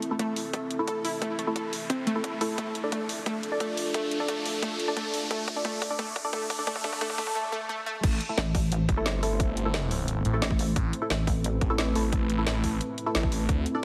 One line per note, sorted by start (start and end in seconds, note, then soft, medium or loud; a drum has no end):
0.00 2.54 C4 medium
0.00 2.54 E4 medium
0.00 2.54 A4 medium
0.00 7.31 E5 medium
0.00 closed hi-hat medium
0.00 riser medium
0.11 0.17 A3 medium
0.11 0.17 E4 medium
0.11 0.17 A4 medium
0.19 0.24 A3 loud
0.19 kick medium
0.19 closed hi-hat medium
0.36 open hi-hat medium
0.53 0.61 A3 medium
0.53 kick loud
0.53 closed hi-hat medium
0.71 closed hi-hat medium
0.79 0.88 A3 loud
0.79 0.88 E4 medium
0.79 0.88 A4 loud
0.88 1.00 A4 loud
0.88 kick loud
0.88 closed hi-hat loud
1.05 1.13 E4 loud
1.05 open hi-hat medium
1.22 1.30 A3 loud
1.22 kick loud
1.22 closed hi-hat medium
1.39 1.47 A3 medium
1.39 closed hi-hat medium
1.47 1.53 A3 medium
1.47 1.53 E4 medium
1.47 1.53 A4 medium
1.56 1.64 A4 loud
1.56 kick loud
1.56 closed hi-hat medium
1.73 open hi-hat medium
1.90 1.98 C4 loud
1.90 kick loud
1.90 closed hi-hat medium
2.07 2.15 A3 loud
2.07 closed hi-hat medium
2.15 2.25 A3 medium
2.15 2.25 E4 medium
2.15 2.25 A4 loud
2.24 kick loud
2.24 closed hi-hat medium
2.41 2.53 A3 medium
2.41 2.50 A3 loud
2.41 2.50 E4 medium
2.41 2.50 A4 loud
2.41 open hi-hat medium
2.58 2.66 A3 loud
2.58 7.31 D4 medium
2.58 7.31 F4 medium
2.58 7.31 A4 medium
2.58 kick loud
2.58 closed hi-hat medium
2.75 closed hi-hat medium
2.84 2.89 D4 medium
2.84 2.89 A4 medium
2.84 2.89 D5 medium
2.92 2.97 A3 medium
2.92 kick loud
2.92 closed hi-hat medium
3.09 open hi-hat medium
3.26 3.34 A3 medium
3.26 kick loud
3.26 closed hi-hat medium
3.43 closed hi-hat medium
3.52 3.57 D4 medium
3.52 3.57 A4 medium
3.52 3.57 D5 medium
3.60 3.65 A3 loud
3.60 kick loud
3.60 closed hi-hat medium
3.77 open hi-hat medium
3.94 4.02 A3 loud
3.94 kick loud
3.94 closed hi-hat medium
4.11 closed hi-hat medium
4.20 4.26 D4 medium
4.20 4.26 A4 medium
4.20 4.26 D5 medium
4.28 4.33 A3 loud
4.28 kick loud
4.28 closed hi-hat medium
4.46 open hi-hat medium
4.62 4.71 A3 loud
4.62 kick loud
4.62 closed hi-hat medium
4.80 closed hi-hat medium
4.88 4.94 D4 medium
4.88 4.94 A4 medium
4.88 4.94 D5 medium
4.97 5.01 A3 loud
4.97 kick loud
4.97 closed hi-hat medium
5.14 open hi-hat medium
5.31 5.39 A3 loud
5.31 kick loud
5.31 closed hi-hat medium
5.48 kick loud
5.48 closed hi-hat medium
5.56 5.62 D4 medium
5.56 5.62 A4 medium
5.56 5.62 D5 medium
5.65 5.73 A3 loud
5.65 kick loud
5.65 closed hi-hat medium
5.82 kick loud
5.82 open hi-hat medium
5.90 5.96 D4 medium
5.90 5.96 A4 medium
5.90 5.96 D5 medium
5.99 6.07 A3 loud
5.99 kick loud
5.99 closed hi-hat medium
6.16 kick loud
6.16 closed hi-hat medium
6.25 6.30 D4 medium
6.25 6.30 A4 medium
6.25 6.30 D5 medium
6.33 6.41 A3 loud
6.33 kick loud
6.33 closed hi-hat medium
6.50 kick loud
6.50 open hi-hat medium
6.59 6.64 D4 medium
6.59 6.64 A4 medium
6.59 6.64 D5 medium
6.67 6.75 A3 loud
6.67 6.73 D4 medium
6.67 6.73 A4 medium
6.67 6.73 D5 medium
6.67 kick loud
6.67 closed hi-hat medium
6.76 kick medium
6.84 6.92 A3 loud
6.84 6.90 D4 medium
6.84 6.90 A4 medium
6.84 6.90 D5 medium
6.84 kick loud
6.84 closed hi-hat medium
6.93 kick medium
7.01 7.09 A3 loud
7.01 7.07 D4 medium
7.01 7.07 A4 medium
7.01 7.07 D5 medium
7.01 kick loud
7.01 closed hi-hat loud
7.10 kick medium
7.18 7.26 A3 loud
7.18 7.24 D4 medium
7.18 7.24 A4 medium
7.18 7.24 D5 medium
7.18 kick loud
7.18 open hi-hat medium
7.27 kick medium
7.35 7.43 A3 loud
7.52 7.60 A3 loud
7.69 7.77 A3 loud
7.86 7.94 A3 loud
8.03 8.19 A1 medium
8.03 13.45 A3 medium
8.03 13.45 C4 medium
8.03 13.84 E4 medium
8.03 10.73 C5 medium
8.03 kick loud
8.03 closed hi-hat loud
8.03 crash loud
8.21 closed hi-hat medium
8.29 8.35 A3 medium
8.29 8.35 E4 medium
8.29 8.35 A4 medium
8.38 8.87 A1 loud
8.38 snare loud
8.38 closed hi-hat loud
8.55 kick loud
8.55 open hi-hat medium
8.72 closed hi-hat loud
8.89 10.24 G1 loud
8.89 kick loud
8.89 closed hi-hat medium
8.97 9.06 A3 medium
8.97 9.06 E4 medium
8.97 9.06 A4 loud
9.06 snare loud
9.06 closed hi-hat medium
9.23 9.32 A3 loud
9.23 9.32 E4 medium
9.23 9.32 A4 loud
9.23 open hi-hat medium
9.40 kick loud
9.40 closed hi-hat loud
9.57 closed hi-hat medium
9.65 9.71 A3 medium
9.65 9.71 E4 medium
9.65 9.71 A4 medium
9.74 snare loud
9.74 closed hi-hat loud
9.91 open hi-hat medium
10.08 closed hi-hat loud
10.25 10.41 A1 loud
10.25 closed hi-hat medium
10.34 10.43 A3 medium
10.34 10.43 E4 medium
10.34 10.43 A4 loud
10.42 10.75 A1 loud
10.42 snare loud
10.42 closed hi-hat loud
10.51 kick loud
10.59 open hi-hat medium
10.76 10.92 A1 loud
10.76 13.46 B4 medium
10.76 kick loud
10.76 closed hi-hat loud
10.93 closed hi-hat medium
11.02 11.07 A3 medium
11.02 11.07 E4 medium
11.02 11.07 A4 medium
11.10 11.60 A1 loud
11.10 snare loud
11.10 closed hi-hat medium
11.27 kick loud
11.27 open hi-hat medium
11.44 closed hi-hat loud
11.61 11.94 A1 loud
11.61 kick loud
11.61 closed hi-hat medium
11.70 11.79 A3 medium
11.70 11.79 E4 medium
11.70 11.79 A4 loud
11.78 snare loud
11.78 closed hi-hat medium
11.95 12.45 A1 loud
11.95 12.05 A3 loud
11.95 12.05 E4 medium
11.95 12.05 A4 loud
11.95 open hi-hat medium
12.13 kick loud
12.13 closed hi-hat medium
12.30 closed hi-hat medium
12.38 12.44 A3 medium
12.38 12.44 E4 medium
12.38 12.44 A4 medium
12.47 12.79 A1 loud
12.47 snare loud
12.47 closed hi-hat medium
12.64 kick medium
12.64 open hi-hat medium
12.81 closed hi-hat medium
12.98 closed hi-hat medium
13.06 13.12 A3 medium
13.06 13.12 E4 medium
13.06 13.12 A4 medium
13.15 13.48 A1 loud
13.15 snare loud
13.15 closed hi-hat medium
13.23 kick loud
13.32 open hi-hat medium
13.49 13.65 D2 medium
13.49 kick loud
13.49 closed hi-hat medium
13.66 closed hi-hat medium
13.75 13.80 D4 medium
13.75 13.80 A4 medium
13.75 13.80 D5 medium